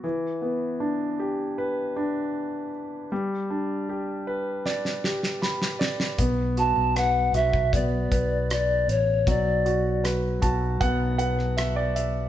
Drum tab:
HH |----------------|----------------|x-x-x-x-x-x-x-x-|x-x-x-x-x-x-x-x-|
SD |----------------|--------oooooooo|----r-------r---|----r------rr---|
BD |----------------|----------------|o------oo-o-----|o-----o-o-------|